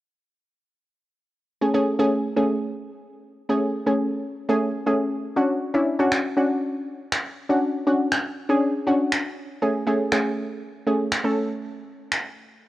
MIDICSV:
0, 0, Header, 1, 3, 480
1, 0, Start_track
1, 0, Key_signature, 3, "major"
1, 0, Tempo, 500000
1, 1555, Time_signature, 4, 2, 24, 8
1, 12177, End_track
2, 0, Start_track
2, 0, Title_t, "Synth pluck"
2, 0, Program_c, 0, 84
2, 1551, Note_on_c, 0, 57, 85
2, 1552, Note_on_c, 0, 61, 75
2, 1554, Note_on_c, 0, 68, 93
2, 1616, Note_off_c, 0, 57, 0
2, 1617, Note_off_c, 0, 61, 0
2, 1618, Note_off_c, 0, 68, 0
2, 1671, Note_on_c, 0, 57, 93
2, 1673, Note_on_c, 0, 61, 85
2, 1676, Note_on_c, 0, 68, 102
2, 1800, Note_off_c, 0, 57, 0
2, 1801, Note_off_c, 0, 61, 0
2, 1802, Note_off_c, 0, 68, 0
2, 1911, Note_on_c, 0, 57, 94
2, 1913, Note_on_c, 0, 61, 88
2, 1916, Note_on_c, 0, 68, 106
2, 2103, Note_off_c, 0, 57, 0
2, 2104, Note_off_c, 0, 61, 0
2, 2106, Note_off_c, 0, 68, 0
2, 2270, Note_on_c, 0, 57, 83
2, 2272, Note_on_c, 0, 61, 74
2, 2275, Note_on_c, 0, 68, 90
2, 2781, Note_off_c, 0, 57, 0
2, 2782, Note_off_c, 0, 61, 0
2, 2783, Note_off_c, 0, 68, 0
2, 3351, Note_on_c, 0, 57, 86
2, 3353, Note_on_c, 0, 61, 80
2, 3356, Note_on_c, 0, 68, 98
2, 3544, Note_off_c, 0, 57, 0
2, 3545, Note_off_c, 0, 61, 0
2, 3546, Note_off_c, 0, 68, 0
2, 3709, Note_on_c, 0, 57, 83
2, 3712, Note_on_c, 0, 61, 77
2, 3713, Note_on_c, 0, 68, 89
2, 4030, Note_off_c, 0, 57, 0
2, 4031, Note_off_c, 0, 61, 0
2, 4032, Note_off_c, 0, 68, 0
2, 4309, Note_on_c, 0, 57, 95
2, 4311, Note_on_c, 0, 61, 86
2, 4314, Note_on_c, 0, 68, 104
2, 4502, Note_off_c, 0, 57, 0
2, 4503, Note_off_c, 0, 61, 0
2, 4505, Note_off_c, 0, 68, 0
2, 4670, Note_on_c, 0, 57, 87
2, 4673, Note_on_c, 0, 61, 79
2, 4674, Note_on_c, 0, 68, 96
2, 5054, Note_off_c, 0, 57, 0
2, 5055, Note_off_c, 0, 61, 0
2, 5056, Note_off_c, 0, 68, 0
2, 5148, Note_on_c, 0, 61, 91
2, 5152, Note_on_c, 0, 62, 82
2, 5154, Note_on_c, 0, 66, 94
2, 5440, Note_off_c, 0, 61, 0
2, 5441, Note_off_c, 0, 62, 0
2, 5443, Note_off_c, 0, 66, 0
2, 5510, Note_on_c, 0, 61, 94
2, 5512, Note_on_c, 0, 62, 85
2, 5515, Note_on_c, 0, 64, 102
2, 5639, Note_off_c, 0, 61, 0
2, 5640, Note_off_c, 0, 62, 0
2, 5642, Note_off_c, 0, 64, 0
2, 5751, Note_on_c, 0, 61, 96
2, 5753, Note_on_c, 0, 62, 89
2, 5756, Note_on_c, 0, 66, 102
2, 5943, Note_off_c, 0, 61, 0
2, 5945, Note_off_c, 0, 62, 0
2, 5946, Note_off_c, 0, 66, 0
2, 6112, Note_on_c, 0, 61, 83
2, 6115, Note_on_c, 0, 62, 79
2, 6118, Note_on_c, 0, 66, 95
2, 6622, Note_off_c, 0, 61, 0
2, 6623, Note_off_c, 0, 62, 0
2, 6625, Note_off_c, 0, 66, 0
2, 7191, Note_on_c, 0, 61, 86
2, 7193, Note_on_c, 0, 62, 82
2, 7196, Note_on_c, 0, 66, 99
2, 7384, Note_off_c, 0, 61, 0
2, 7385, Note_off_c, 0, 62, 0
2, 7386, Note_off_c, 0, 66, 0
2, 7552, Note_on_c, 0, 61, 86
2, 7555, Note_on_c, 0, 62, 76
2, 7556, Note_on_c, 0, 66, 94
2, 7871, Note_off_c, 0, 61, 0
2, 7873, Note_off_c, 0, 62, 0
2, 7873, Note_off_c, 0, 66, 0
2, 8151, Note_on_c, 0, 61, 92
2, 8153, Note_on_c, 0, 62, 88
2, 8156, Note_on_c, 0, 68, 104
2, 8344, Note_off_c, 0, 61, 0
2, 8345, Note_off_c, 0, 62, 0
2, 8346, Note_off_c, 0, 68, 0
2, 8513, Note_on_c, 0, 61, 89
2, 8515, Note_on_c, 0, 62, 82
2, 8517, Note_on_c, 0, 66, 96
2, 8895, Note_off_c, 0, 61, 0
2, 8896, Note_off_c, 0, 62, 0
2, 8897, Note_off_c, 0, 66, 0
2, 9234, Note_on_c, 0, 57, 84
2, 9236, Note_on_c, 0, 61, 78
2, 9238, Note_on_c, 0, 68, 96
2, 9362, Note_off_c, 0, 57, 0
2, 9362, Note_off_c, 0, 61, 0
2, 9364, Note_off_c, 0, 68, 0
2, 9472, Note_on_c, 0, 57, 94
2, 9474, Note_on_c, 0, 61, 84
2, 9477, Note_on_c, 0, 68, 100
2, 9600, Note_off_c, 0, 57, 0
2, 9602, Note_off_c, 0, 61, 0
2, 9603, Note_off_c, 0, 68, 0
2, 9713, Note_on_c, 0, 57, 94
2, 9716, Note_on_c, 0, 61, 85
2, 9718, Note_on_c, 0, 68, 102
2, 10095, Note_off_c, 0, 57, 0
2, 10097, Note_off_c, 0, 61, 0
2, 10098, Note_off_c, 0, 68, 0
2, 10432, Note_on_c, 0, 57, 81
2, 10435, Note_on_c, 0, 61, 75
2, 10438, Note_on_c, 0, 68, 88
2, 10624, Note_off_c, 0, 57, 0
2, 10626, Note_off_c, 0, 61, 0
2, 10627, Note_off_c, 0, 68, 0
2, 10791, Note_on_c, 0, 57, 90
2, 10794, Note_on_c, 0, 61, 83
2, 10796, Note_on_c, 0, 69, 94
2, 11302, Note_off_c, 0, 57, 0
2, 11303, Note_off_c, 0, 61, 0
2, 11304, Note_off_c, 0, 69, 0
2, 12177, End_track
3, 0, Start_track
3, 0, Title_t, "Drums"
3, 5873, Note_on_c, 9, 26, 111
3, 5969, Note_off_c, 9, 26, 0
3, 6835, Note_on_c, 9, 26, 115
3, 6931, Note_off_c, 9, 26, 0
3, 7794, Note_on_c, 9, 26, 112
3, 7890, Note_off_c, 9, 26, 0
3, 8755, Note_on_c, 9, 26, 112
3, 8851, Note_off_c, 9, 26, 0
3, 9715, Note_on_c, 9, 26, 110
3, 9811, Note_off_c, 9, 26, 0
3, 10675, Note_on_c, 9, 26, 113
3, 10771, Note_off_c, 9, 26, 0
3, 11633, Note_on_c, 9, 26, 108
3, 11729, Note_off_c, 9, 26, 0
3, 12177, End_track
0, 0, End_of_file